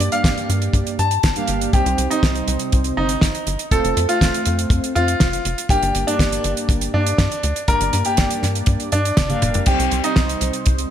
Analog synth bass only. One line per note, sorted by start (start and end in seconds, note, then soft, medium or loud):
0.24 0.34 G1 medium
0.49 0.69 G2 medium
0.73 0.84 G2 medium
0.99 1.19 G2 medium
1.24 1.34 G1 medium
1.48 1.68 G1 medium
1.73 1.83 C2 loud
1.86 1.96 C2 loud
1.98 2.08 C2 medium
2.23 2.43 C2 medium
2.48 2.58 C2 medium
2.73 2.92 C2 loud
2.97 3.17 G1 medium
3.22 3.32 G1 loud
3.47 3.57 G1 loud
3.71 3.81 F1 medium
3.85 3.94 F1 medium
3.97 4.07 F2 medium
4.21 4.31 F1 medium
4.46 4.66 F2 medium
4.70 4.80 F2 medium
4.96 5.16 F2 medium
5.21 5.41 F1 medium
5.45 5.55 F1 medium
5.69 5.80 G1 loud
5.83 5.92 G1 loud
5.95 6.05 G1 medium
6.19 6.39 G1 medium
6.44 6.54 G1 medium
6.69 6.89 G1 loud
6.94 7.14 G2 loud
7.18 7.29 G2 loud
7.44 7.53 D2 loud
7.68 7.78 G1 medium
7.81 7.91 G1 medium
7.93 8.03 G2 medium
8.18 8.28 G1 medium
8.43 8.63 G2 medium
8.67 8.77 G2 medium
8.93 9.12 G2 loud
9.18 9.37 F1 medium
9.42 9.62 F1 medium
9.67 9.77 C2 loud
9.79 9.89 C2 loud
9.92 10.02 C2 medium
10.17 10.36 C2 medium
10.41 10.51 C2 medium
10.67 10.86 C2 loud